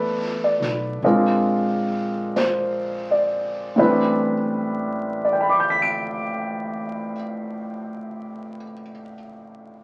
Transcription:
Already playing: upright bass E2, upright piano A3 B3 D4 E4 A4 B4
0.44 upright piano D5
0.60 upright bass B1, snare
1.03 upright bass A#1, upright piano G#3 C4 D4 F4 A#4, brush sweep
2.36 upright piano C5, brush sweep, snare, hi-hat pedal
3.11 upright piano D5
3.76 upright bass A1, upright piano A2 E3 G3 C4 D4 B4
5.25 upright piano D5
5.33 upright piano G5
5.41 upright piano B5
5.49 upright piano D6
5.60 upright piano G6
5.70 upright piano B6
5.82 upright piano D7

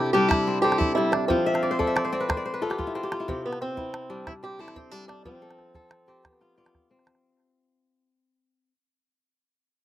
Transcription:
Already playing: kora C3 C4 D4 E4 G4, steel-string acoustic guitar G4
0.06 calabash click
0.13 kora G3 D4, steel-string acoustic guitar G4
0.28 steel-string acoustic guitar E4, calabash thump, calabash click
0.47 kora C4
0.62 kora C4 A4, steel-string acoustic guitar G4
0.72 calabash click
0.78 steel-string acoustic guitar E4, calabash thump
0.95 kora G3, steel-string acoustic guitar E4, calabash click
1.12 steel-string acoustic guitar D4, calabash click
1.28 kora F3, steel-string acoustic guitar C4, calabash thump, calabash click
1.46 kora E5
1.54 kora F5, calabash click
1.63 kora D5, calabash click
1.71 kora C5
1.79 kora A4 D5, calabash thump
1.87 kora E5
1.96 kora D5, calabash click
2.05 kora C5, calabash click
2.12 kora C4 D5
2.20 kora B4
2.29 kora C5, calabash thump, calabash click
2.37 kora D5
2.45 kora C5
2.54 kora B4
2.62 kora F4 A4
2.70 kora G4, calabash click
2.78 kora F4, calabash thump
2.87 kora E4
2.95 kora C4 F4, calabash click
3.03 kora G4
3.12 kora F4, calabash click
3.20 kora E4
3.28 kora C3, steel-string acoustic guitar C4, calabash thump, calabash click
3.46 steel-string acoustic guitar B3
3.53 calabash click
3.61 steel-string acoustic guitar C4, calabash click
3.77 kora E4, calabash thump
3.94 calabash click
4.02 calabash click
4.10 kora G3 D4
4.27 steel-string acoustic guitar E4, calabash thump, calabash click
4.43 kora C4, steel-string acoustic guitar G4
4.59 kora C4 A4, steel-string acoustic guitar E4
4.68 calabash click
4.76 steel-string acoustic guitar C4, calabash thump
4.91 kora G3, steel-string acoustic guitar D4, calabash click
5.08 steel-string acoustic guitar D4, calabash click
5.25 kora F3, steel-string acoustic guitar C4, calabash thump, calabash click
5.42 kora A4
5.51 calabash click
5.59 calabash click
5.75 kora A4, calabash thump, calabash click
5.91 calabash click
6.08 kora C4 G4, calabash click
6.25 steel-string acoustic guitar B3, calabash thump, calabash click
6.33 calabash click
6.41 kora F4, calabash click
6.58 kora F4 D5
6.66 calabash click
6.75 calabash thump, calabash click
6.91 kora C4
6.99 calabash click
7.07 calabash click
7.15 calabash click

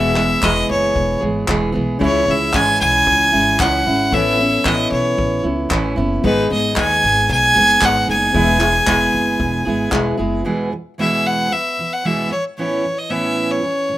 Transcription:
Already playing: upright bass E1, steel-string acoustic guitar E2 B2 E3 G#3 B3 G#4, reed electric piano B3 G#4 E5, violin E5
0.14 steel-string acoustic guitar E3 G#3 B3 G#4, clap
0.41 upright bass E1, steel-string acoustic guitar E3 G#3 B3 G#4, violin D#5, kick, clap
0.70 upright bass F#1, violin C#5
0.96 upright bass E1, kick
1.21 upright bass G#1, steel-string acoustic guitar E3 G#3 B3 G#4
1.47 upright bass E1, steel-string acoustic guitar E3 G#3 B3 G#4, kick, clap
1.72 upright bass B1, steel-string acoustic guitar E3 G#3 B3 G#4
1.99 upright bass C#2, steel-string acoustic guitar C#3 E3 G#3 C#4 E4, reed electric piano C#4 G#4, kick
2.03 violin C#5, reed electric piano E5
2.26 upright bass C#2, steel-string acoustic guitar G#3 C#4 E4
2.31 violin E5
2.53 upright bass G#1, steel-string acoustic guitar E3 G#3 C#4 E4, violin G#5, kick, clap
2.81 upright bass B1, violin G#5
3.07 upright bass C#2, kick
3.32 upright bass G#1, steel-string acoustic guitar G#3 C#4 E4
3.59 upright bass C#2, steel-string acoustic guitar E3 G#3 C#4 E4, violin F#5, kick, clap
3.86 upright bass G#1, steel-string acoustic guitar G#3 C#4 E4
4.11 upright bass A1, steel-string acoustic guitar A2 E3 B3 C#4 E4, reed electric piano B3 A4 C#5, violin E5, kick
4.38 steel-string acoustic guitar B3 C#4 E4
4.64 upright bass A1, steel-string acoustic guitar E3 B3 C#4 E4, violin D#5, kick, clap
4.92 upright bass B1, violin C#5
5.18 upright bass A1, kick
5.43 upright bass C#2, steel-string acoustic guitar B3 C#4 E4
5.69 upright bass A1, steel-string acoustic guitar E3 B3 C#4 E4, kick, clap
5.96 upright bass F#1, steel-string acoustic guitar B3 C#4 E4
6.22 upright bass G#1, steel-string acoustic guitar G#2 D#3 G#3 B3 D#4 G#4, reed electric piano B3 G#4, violin B4, kick
6.27 reed electric piano D#5
6.50 upright bass G#1, steel-string acoustic guitar G#3 B3 D#4, violin D#5
6.75 upright bass D#2, steel-string acoustic guitar G#3 B3 D#4 G#4, violin G#5, kick, clap
7.04 upright bass G#1
7.30 upright bass B1, violin G#5, kick
7.55 upright bass F#1, steel-string acoustic guitar G#3 B3 D#4 G#4
7.81 upright bass G#1, steel-string acoustic guitar G#3 B3 D#4 G#4, violin F#5, kick, clap
8.07 upright bass F#1, steel-string acoustic guitar G#3 B3 D#4 G#4, violin G#5
8.33 upright bass E1, steel-string acoustic guitar E2 E3 G#3 B3 E4 G#4, reed electric piano B3 G#4 E5, kick
8.59 steel-string acoustic guitar G#3 B3 E4 G#4, clap
8.86 upright bass E1, steel-string acoustic guitar G#3 B3 E4 G#4, kick, clap
9.14 upright bass F#1
9.40 upright bass E1, kick
9.65 upright bass G#1, steel-string acoustic guitar G#3 B3 E4 G#4
9.91 upright bass E1, steel-string acoustic guitar G#3 B3 E4 G#4, reed electric piano B3 G#4 E5, kick, clap
10.17 upright bass F#1, steel-string acoustic guitar G#3 B3 E4 G#4
10.45 steel-string acoustic guitar E2 B2 E3 G#3 B3 G#4
10.71 steel-string acoustic guitar E2 B2 E3
10.98 steel-string acoustic guitar E2 B2 E3 G#3 B3 G#4, violin E5
11.27 violin F#5
11.49 steel-string acoustic guitar E2 B2 E3, violin E5
11.77 steel-string acoustic guitar E2 B2 E3
11.93 violin F#5
12.04 steel-string acoustic guitar E2 B2 E3 G#3 B3 G#4, violin E5
12.30 steel-string acoustic guitar A2 E3, violin C#5
12.58 steel-string acoustic guitar A2 E3 B3 C#4 E4, violin C#5
12.84 steel-string acoustic guitar A2 E3
12.98 violin D#5
13.09 steel-string acoustic guitar A2 E3 B3 C#4 E4, violin E5
13.51 violin C#5
13.62 steel-string acoustic guitar A2 E3
13.89 steel-string acoustic guitar A2 E3

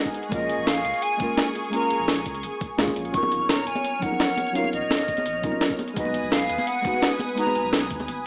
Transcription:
Already playing: synth stab G#3 B3 D#4 F#4 A#4, analog synth pad G#4 F#5
0.05 kick
0.14 analog synth pad G#5 C#6, closed hi-hat, cabasa
0.23 closed hi-hat
0.29 sub bass A#1, synth stab G#3 A#3 C#4, flute D#5, kick, closed hi-hat
0.33 synth stab F4 A#4
0.41 cabasa
0.49 sub bass F1, closed hi-hat, cabasa
0.58 sub bass A#1
0.67 flute F5, snare, closed hi-hat
0.85 sub bass C#2, closed hi-hat, cabasa
0.94 closed hi-hat
1.02 flute G#5, closed hi-hat
1.17 synth stab G#3 A#3 C#4, kick, closed hi-hat, cabasa
1.22 synth stab F4 A#4
1.37 snare, closed hi-hat
1.55 closed hi-hat, cabasa
1.64 closed hi-hat
1.70 synth stab G#3 A#3 C#4, flute A#5, closed hi-hat
1.75 synth stab F4 A#4
1.82 cabasa
1.90 sub bass F1, closed hi-hat, cabasa
2.00 sub bass A#1
2.08 snare, closed hi-hat
2.17 closed hi-hat, cabasa
2.26 sub bass C#2, kick, closed hi-hat, cabasa
2.35 closed hi-hat
2.43 sub bass F1, closed hi-hat
2.61 kick, closed hi-hat, cabasa
2.77 sub bass D#2, synth stab G#3 A#3 C#4 F4 G#4, snare, closed hi-hat
2.87 kick, cabasa
2.96 sub bass A#1, closed hi-hat, cabasa
3.05 closed hi-hat
3.11 sub bass D#1, synth stab F#3 C#4 D#4, analog synth pad C#5 F6, flute C#6, kick, closed hi-hat
3.16 synth stab F4 A#4
3.23 high conga, cabasa
3.32 sub bass A#1, closed hi-hat, cabasa
3.41 sub bass D#1
3.49 flute A#5, snare, closed hi-hat, high conga
3.67 sub bass F#1, flute G#5, closed hi-hat, cabasa
3.75 closed hi-hat, high conga
3.84 closed hi-hat
3.99 synth stab F#3 C#4 D#4, flute F#5, kick, closed hi-hat, cabasa
4.04 synth stab F3 A#4
4.11 high conga
4.20 snare, closed hi-hat
4.37 closed hi-hat, high conga, cabasa
4.46 closed hi-hat
4.52 synth stab F#3 C#4 D#4, flute F5, closed hi-hat
4.57 synth stab F4 A#4
4.64 high conga, cabasa
4.73 sub bass A#1, flute D#5, closed hi-hat, cabasa
4.82 sub bass D#1
4.90 snare, closed hi-hat, high conga
5.08 sub bass F#1, kick, closed hi-hat, cabasa
5.17 closed hi-hat, high conga
5.26 sub bass A#1, closed hi-hat
5.42 sub bass C#2, synth stab F#3 C#4 D#4 F4 A#4, kick, closed hi-hat, cabasa
5.52 sub bass D#1, high conga
5.61 snare, closed hi-hat
5.70 kick
5.79 analog synth pad B4 G#5 D#6, closed hi-hat, high conga, cabasa
5.88 closed hi-hat
5.93 sub bass B1, synth stab G#3 B3 D#4, flute D#5, kick, closed hi-hat
5.98 synth stab F#4 B4
6.05 high conga, cabasa
6.14 sub bass F#1, closed hi-hat, cabasa
6.23 sub bass B1
6.31 flute F5, snare, closed hi-hat, high conga
6.49 sub bass D#2, closed hi-hat, cabasa
6.58 closed hi-hat, high conga
6.67 flute F#5, closed hi-hat
6.82 synth stab G#3 B3 D#4, kick, closed hi-hat, cabasa
6.86 synth stab F#4 B4
6.94 high conga
7.02 snare, closed hi-hat
7.19 closed hi-hat, high conga, cabasa
7.29 closed hi-hat
7.34 synth stab G#3 B3 D#4, flute A#5, closed hi-hat
7.39 synth stab F#4 B4
7.46 high conga, cabasa
7.55 sub bass F#1, closed hi-hat, cabasa
7.64 sub bass B1
7.73 snare, closed hi-hat, high conga
7.91 sub bass D#2, kick, closed hi-hat, cabasa
8.00 closed hi-hat, high conga
8.08 sub bass F#1, closed hi-hat

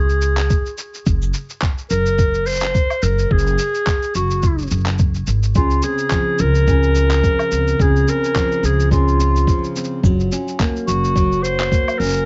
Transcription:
Already playing: upright bass C#2, clarinet G#4
0.09 cabasa
0.22 cabasa
0.37 clap, cabasa
0.50 kick, cabasa
0.66 cabasa
0.78 cabasa
0.94 cabasa
1.06 upright bass F#1, kick, cabasa
1.22 cabasa
1.34 cabasa
1.50 cabasa
1.62 kick, clap
1.78 cabasa
1.90 upright bass F#1, clarinet A#4, cabasa
2.06 cabasa
2.18 kick, cabasa
2.34 cabasa
2.46 clarinet C5, cabasa
2.49 cabasa
2.52 cabasa
2.54 cabasa
2.56 cabasa
2.60 clap, cabasa
2.75 kick, cabasa
2.90 cabasa, low woodblock
3.02 upright bass F#1, clarinet A#4, cabasa
3.18 cabasa
3.31 upright bass F#1, clarinet G#4, kick
3.38 cabasa
3.47 cabasa
3.59 cabasa
3.74 cabasa
3.87 kick, clap, cabasa
4.02 cabasa
4.15 upright bass F#1, clarinet F#4, cabasa
4.30 cabasa
4.43 kick, cabasa
4.58 cabasa
4.61 cabasa
4.67 cabasa
4.71 upright bass F#1, cabasa
4.80 cabasa
4.86 clap, cabasa
4.98 kick, cabasa
5.14 cabasa
5.27 upright bass G#1, cabasa
5.43 cabasa
5.55 upright bass C#2, nylon-string guitar C#3, clarinet F4, kick, cabasa
5.70 cabasa
5.82 nylon-string guitar C4, clarinet G#4, cabasa
5.98 cabasa
6.10 nylon-string guitar F3, kick, clap, cabasa
6.39 upright bass C#2, clarinet A#4, cabasa
6.55 cabasa
6.68 nylon-string guitar C#3, kick, cabasa
6.83 cabasa
6.95 nylon-string guitar F4, cabasa
7.11 clap, cabasa
7.24 nylon-string guitar F3, kick, cabasa
7.39 cabasa, low woodblock
7.52 upright bass C#2, nylon-string guitar C4, cabasa
7.68 cabasa
7.79 upright bass C#2, nylon-string guitar C#3, clarinet G#4, kick, cabasa
7.96 cabasa
8.07 nylon-string guitar C4, clarinet A#4, cabasa
8.24 cabasa
8.35 nylon-string guitar F3, kick, clap, cabasa
8.52 cabasa
8.63 upright bass C#2, clarinet G#4, cabasa
8.80 cabasa
8.91 nylon-string guitar C#3, clarinet F4, kick, cabasa
9.08 cabasa
9.20 nylon-string guitar F4, cabasa
9.36 cabasa
9.47 nylon-string guitar F3, kick, cabasa
9.64 cabasa
9.76 nylon-string guitar C4, cabasa
9.84 cabasa
10.03 upright bass F#1, nylon-string guitar F#3, kick, cabasa
10.20 cabasa
10.32 nylon-string guitar C#4, cabasa
10.48 cabasa
10.60 nylon-string guitar A#3, kick, clap, cabasa
10.76 cabasa
10.87 upright bass F#1, clarinet F#4, cabasa
11.04 cabasa
11.15 nylon-string guitar F#3, kick, cabasa
11.32 cabasa
11.43 clarinet C5, cabasa
11.60 clap
11.72 nylon-string guitar A#3, kick, cabasa
11.88 cabasa, low woodblock
11.98 upright bass F#1, nylon-string guitar C#4, clarinet A#4, cabasa
12.03 cabasa
12.05 cabasa
12.08 cabasa
12.10 cabasa
12.13 cabasa

